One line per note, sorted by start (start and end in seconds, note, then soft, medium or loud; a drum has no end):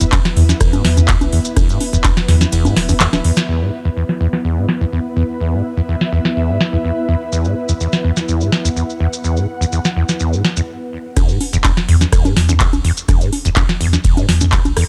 0.00 0.31 E1 loud
0.00 0.05 E2 loud
0.00 3.47 B3 medium
0.00 3.48 E4 medium
0.00 3.49 B4 medium
0.00 3.48 E5 medium
0.00 closed hi-hat medium
0.00 maracas medium
0.12 0.19 E2 medium
0.12 kick loud
0.12 clap loud
0.12 closed hi-hat medium
0.12 ride medium
0.12 high conga medium
0.12 maracas medium
0.25 snare medium
0.25 closed hi-hat soft
0.25 maracas soft
0.36 0.43 E2 loud
0.36 0.53 E2 loud
0.36 open hi-hat loud
0.49 snare medium
0.49 closed hi-hat medium
0.49 high conga soft
0.49 maracas medium
0.60 0.77 D1 loud
0.60 0.75 E2 medium
0.60 kick loud
0.60 cross-stick medium
0.60 closed hi-hat medium
0.60 ride medium
0.60 maracas medium
0.73 0.83 G#2 medium
0.73 closed hi-hat soft
0.73 high conga medium
0.73 maracas soft
0.85 1.15 E2 loud
0.85 snare medium
0.85 open hi-hat loud
0.97 1.01 E2 loud
0.97 closed hi-hat medium
0.97 high conga soft
0.97 maracas medium
1.08 1.15 E2 medium
1.08 kick loud
1.08 clap loud
1.08 closed hi-hat medium
1.08 ride medium
1.08 maracas medium
1.21 1.29 B1 medium
1.21 closed hi-hat soft
1.21 high conga medium
1.21 maracas soft
1.32 1.39 E2 loud
1.32 open hi-hat loud
1.45 closed hi-hat medium
1.45 maracas medium
1.56 1.65 E1 loud
1.56 1.71 E2 medium
1.56 kick loud
1.56 cross-stick medium
1.56 closed hi-hat medium
1.56 ride medium
1.56 high conga medium
1.56 maracas medium
1.69 1.79 G#2 medium
1.69 closed hi-hat soft
1.69 maracas soft
1.80 open hi-hat loud
1.80 high conga soft
1.93 2.23 E1 loud
1.93 1.97 E2 loud
1.93 closed hi-hat medium
1.93 maracas medium
2.04 2.11 E2 medium
2.04 kick loud
2.04 clap loud
2.04 closed hi-hat medium
2.04 ride medium
2.04 high conga medium
2.04 maracas medium
2.17 snare medium
2.17 closed hi-hat soft
2.17 maracas soft
2.28 2.35 E2 loud
2.28 2.45 E2 loud
2.28 snare medium
2.28 open hi-hat loud
2.41 snare medium
2.41 closed hi-hat medium
2.41 high conga soft
2.41 maracas medium
2.52 2.69 E1 loud
2.52 2.66 E2 medium
2.52 closed hi-hat medium
2.52 ride medium
2.52 maracas medium
2.65 2.74 G#2 medium
2.65 closed hi-hat soft
2.65 high conga medium
2.65 maracas soft
2.77 3.07 E1 medium
2.77 snare medium
2.77 open hi-hat loud
2.89 2.93 E2 loud
2.89 open hi-hat medium
2.89 high conga soft
2.89 maracas medium
3.00 3.07 E2 medium
3.00 snare medium
3.00 clap loud
3.00 closed hi-hat medium
3.00 ride medium
3.00 maracas medium
3.13 3.21 D1 medium
3.13 snare medium
3.13 closed hi-hat soft
3.13 high conga medium
3.13 maracas soft
3.24 3.31 E2 loud
3.24 open hi-hat loud
3.37 snare medium
3.37 closed hi-hat medium
3.37 maracas medium
3.48 3.63 E2 medium
3.48 10.69 B3 medium
3.61 3.71 G#2 medium
3.67 10.68 E4 medium
3.85 3.89 E2 medium
3.97 4.03 E2 medium
3.97 10.69 B4 medium
4.09 snare medium
4.21 4.27 E2 loud
4.33 snare medium
4.45 4.59 E2 medium
4.57 4.67 G#2 medium
4.69 snare medium
4.81 4.85 E2 medium
4.93 4.99 E2 medium
5.17 5.23 E2 medium
5.17 8.35 E5 medium
5.41 5.55 E2 medium
5.53 5.63 G#2 medium
5.77 5.81 E2 medium
5.89 5.95 E2 medium
6.01 snare medium
6.13 6.19 E2 loud
6.25 snare medium
6.36 6.51 E2 medium
6.49 6.59 G#2 medium
6.61 snare medium
6.73 6.77 E2 medium
6.84 6.91 E2 medium
7.09 7.15 E2 loud
7.32 7.47 E2 medium
7.32 maracas medium
7.45 7.55 G#2 medium
7.45 maracas soft
7.69 7.73 E2 loud
7.69 maracas medium
7.80 7.87 E2 medium
7.80 maracas medium
7.93 snare medium
7.93 maracas soft
8.04 8.11 E2 loud
8.17 snare medium
8.17 maracas medium
8.21 10.69 F#5 medium
8.28 8.42 E2 medium
8.28 maracas medium
8.41 8.50 G#2 medium
8.41 maracas soft
8.52 snare medium
8.65 8.69 E2 medium
8.65 maracas medium
8.77 8.83 E2 medium
8.77 maracas medium
8.90 maracas soft
9.00 9.07 E2 medium
9.13 maracas medium
9.24 9.39 E2 medium
9.24 maracas medium
9.37 9.47 G#2 medium
9.37 maracas soft
9.61 9.65 E2 loud
9.61 maracas medium
9.72 9.79 E2 medium
9.72 maracas medium
9.85 snare medium
9.85 maracas soft
9.96 10.03 E2 medium
10.09 snare medium
10.09 maracas medium
10.20 10.35 E2 medium
10.20 maracas medium
10.33 10.43 G#2 medium
10.33 maracas soft
10.45 snare medium
10.57 10.61 E2 medium
10.57 maracas medium
11.17 11.25 E1 loud
11.17 11.31 E2 medium
11.17 kick loud
11.17 cross-stick medium
11.17 closed hi-hat medium
11.17 ride medium
11.17 high conga medium
11.17 maracas medium
11.29 11.39 G#2 medium
11.29 maracas soft
11.41 open hi-hat loud
11.41 high conga soft
11.53 11.83 E1 loud
11.53 11.57 E2 loud
11.53 closed hi-hat medium
11.53 maracas medium
11.64 11.71 E2 medium
11.64 kick loud
11.64 clap loud
11.64 closed hi-hat medium
11.64 ride medium
11.64 high conga medium
11.64 maracas medium
11.77 snare medium
11.77 closed hi-hat soft
11.77 maracas soft
11.88 11.95 E2 loud
11.88 12.05 E2 loud
11.88 open hi-hat loud
12.01 snare medium
12.01 closed hi-hat medium
12.01 high conga soft
12.01 maracas medium
12.13 12.29 D1 medium
12.13 12.27 E2 medium
12.13 kick loud
12.13 cross-stick medium
12.13 closed hi-hat medium
12.13 ride medium
12.13 maracas medium
12.25 12.34 G#2 medium
12.25 closed hi-hat soft
12.25 high conga medium
12.25 maracas soft
12.37 12.67 E2 loud
12.37 snare medium
12.37 open hi-hat loud
12.49 12.53 E2 loud
12.49 closed hi-hat medium
12.49 high conga soft
12.49 maracas medium
12.60 12.67 E2 medium
12.60 kick loud
12.60 clap loud
12.60 closed hi-hat medium
12.60 ride medium
12.60 maracas medium
12.73 12.81 B1 medium
12.73 closed hi-hat soft
12.73 high conga medium
12.73 maracas soft
12.84 12.91 E2 loud
12.84 open hi-hat loud
12.97 closed hi-hat medium
12.97 maracas medium
13.09 13.17 E1 loud
13.09 13.23 E2 medium
13.09 kick loud
13.09 cross-stick medium
13.09 closed hi-hat medium
13.09 ride medium
13.09 high conga medium
13.09 maracas medium
13.21 13.31 G#2 medium
13.21 closed hi-hat soft
13.21 maracas soft
13.33 open hi-hat loud
13.33 high conga soft
13.45 13.75 E1 loud
13.45 13.49 E2 loud
13.45 closed hi-hat medium
13.45 maracas medium
13.56 13.63 E2 medium
13.56 kick loud
13.56 clap loud
13.56 closed hi-hat medium
13.56 ride medium
13.56 high conga medium
13.56 maracas medium
13.69 snare medium
13.69 closed hi-hat soft
13.69 maracas soft
13.81 13.87 E2 loud
13.81 13.97 E2 loud
13.81 open hi-hat loud
13.93 snare medium
13.93 high conga soft
13.93 maracas medium
14.04 14.21 D1 loud
14.04 14.19 E2 medium
14.04 kick loud
14.04 closed hi-hat medium
14.04 ride medium
14.04 maracas medium
14.17 14.26 G#2 medium
14.17 closed hi-hat soft
14.17 high conga medium
14.17 maracas soft
14.29 14.59 E2 loud
14.29 snare medium
14.29 open hi-hat loud
14.41 14.45 E2 loud
14.41 closed hi-hat medium
14.41 high conga soft
14.41 maracas medium
14.52 14.59 E2 medium
14.52 kick loud
14.52 clap loud
14.52 closed hi-hat medium
14.52 ride medium
14.52 maracas medium
14.65 14.73 B1 medium
14.65 closed hi-hat soft
14.65 high conga medium
14.65 maracas soft
14.77 14.83 E2 loud
14.77 cross-stick medium
14.77 open hi-hat loud